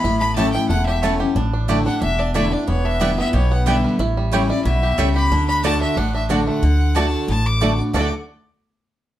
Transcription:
<<
  \new Staff \with { instrumentName = "Fiddle" } { \time 4/4 \key d \major \tempo 4 = 182 b''8 b''8 a''8 g''8 fis''8 e''8 cis''8. r16 | r4. fis''8 e''8 d''8 e''8 d''8 | cis''8 e''4 e''8 cis''8 fis''8 e''8. r16 | r4. d''8 e''4. b''8~ |
b''8 b''8 a''8 e''8 fis''8 e''8 d''8 fis''8~ | fis''4 a''4 a''8 d'''4 r8 | d'''8 r2. r8 | }
  \new Staff \with { instrumentName = "Mandolin" } { \time 4/4 \key d \major r4 <a e' cis'' a''>8 r4. <a e' cis'' a''>8 r8 | r4 <a e' d'' a''>8 r4. <a e' d'' a''>8 r8 | r4 <b e' d'' g''>8 r4. <b e' d'' g''>8 r8 | r4 <a e' cis'' g''>8 r4. <a e' cis'' g''>8 r8 |
r4 <a fis' d'' a''>8 r4. <a fis' d'' a''>8 r8 | r4 <a fis' d'' a''>8 r4. <a fis' d'' a''>8 r8 | <a fis' d'' a''>8 r2. r8 | }
  \new Staff \with { instrumentName = "Five-string banjo" } { \time 4/4 \key d \major e'8 a8 g'8 e'8 a8 g'8 a8 g'8 | d'8 d'8 g'8 d'8 d'8 d'8 a8 d'8 | b8 d'8 g'8 b8 g'8 b8 g'8 g8 | e'8 g8 g'8 e'8 g8 g'8 g8 g'8 |
d'8 d'8 d'8 d'8 d'8 d'8 d'8 a8 | r4 <a d'>8 r4. <a d'>8 r8 | <a d' fis' a'>8 r2. r8 | }
  \new Staff \with { instrumentName = "Steel-string acoustic guitar" } { \time 4/4 \key d \major << { r4 <e a cis' e'>8 <cis' e'>8 r4 <e a cis' e'>8 <cis' e'>8 | r4 <d a d' e'>8 <d' e'>8 r4 <d a d' e'>8 <d' e'>8 | r4 <d g b e'>8 <b e'>8 r4 <d g b e'>4 | r4 <e g cis' e'>8 <cis' e'>8 r2 |
r4 <d a d' fis'>4 r4 <d a d' fis'>4 | r4 <d a d' fis'>4 r4 <d a d' fis'>8 <d' fis'>8 | <d a d' fis'>8 r2. r8 | } \\ { a,2 e,2 | a,2 e,2 | e,2 b,2 | a,2 b,4 cis4 |
d2 a,2 | d2 a,2 | r1 | } >> }
  \new Staff \with { instrumentName = "Upright bass" } { \clef bass \time 4/4 \key d \major a,,2 e,,2 | a,,2 e,,2 | e,,2 b,,2 | a,,2 b,,4 cis,4 |
d,2 a,,2 | d,2 a,,2 | d,8 r2. r8 | }
>>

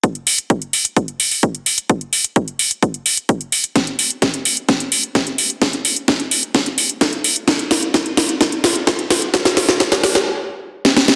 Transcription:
\new DrumStaff \with { instrumentName = "Drums" } \drummode { \time 4/4 \tempo 4 = 129 <hh bd>16 hh16 hho16 hh16 <hh bd>16 hh16 hho16 hh16 <hh bd>16 hh16 hho16 hho16 <hh bd>16 hh16 hho16 hh16 | <hh bd>16 hh16 hho16 hh16 <hh bd>16 hh16 hho16 hh16 <hh bd>16 hh16 hho16 hh16 <hh bd>16 hh16 hho16 hh16 | <hh bd sn>16 hh16 hho16 hh16 <hh bd sn>16 hh16 hho16 hh16 <hh bd sn>16 hh16 hho16 hh16 <hh bd sn>16 hh16 hho16 hh16 | <hh bd sn>16 hh16 hho16 hh16 <hh bd sn>16 hh16 hho16 hh16 <hh bd sn>16 hh16 hho16 hh16 <hh bd sn>16 hh16 hho16 hh16 |
<hh bd sn>16 hh16 <hho sn>16 hh16 <hh bd sn>16 hh16 <hho sn>16 hh16 <hh bd sn>16 hh16 <hho sn>16 hh16 <hh bd sn>16 hh16 <hho sn>16 hh16 | <hh bd sn>16 <hh sn>16 <hho sn>16 sn16 <hh bd sn>16 <hh sn>16 <hho sn>16 sn16 r4 r16 sn16 sn16 sn16 | }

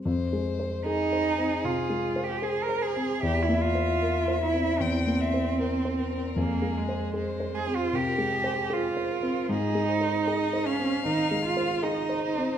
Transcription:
<<
  \new Staff \with { instrumentName = "Violin" } { \time 4/4 \key f \minor \tempo 4 = 77 c''4 aes'2 c''4 | e''2 g''8 e''8 c''8 bes'8 | aes'4 c''4 bes'8 aes'8 c''8 bes'8 | aes'8 c''8 ees''8 f''4. ees''8 c''8 | }
  \new Staff \with { instrumentName = "Cello" } { \time 4/4 \key f \minor r4 ees'4 f'8. g'16 aes'16 bes'16 aes'8 | g'16 e'16 f'4 e'8 c'2 | bes8 aes4 aes'16 f'16 g'4 f'4 | ees'4. des'8 ees'8 f'8 ees'4 | }
  \new Staff \with { instrumentName = "Grand piano" } { \time 4/4 \key f \minor \tuplet 3/2 { f,8 aes8 c''8 aes'8 c''8 c'8 c8 aes8 c''8 aes'8 c''8 c'8 } | \tuplet 3/2 { e,8 bes8 c''8 bes'8 c''8 c'8 e,8 bes8 c''8 bes'8 c''8 c'8 } | \tuplet 3/2 { f,8 aes8 c''8 aes'8 c''8 c'8 c8 aes8 c''8 aes'8 c''8 c'8 } | \tuplet 3/2 { aes,8 aes8 c''8 aes'8 c''8 c'8 ees8 aes8 c''8 aes'8 c''8 c'8 } | }
>>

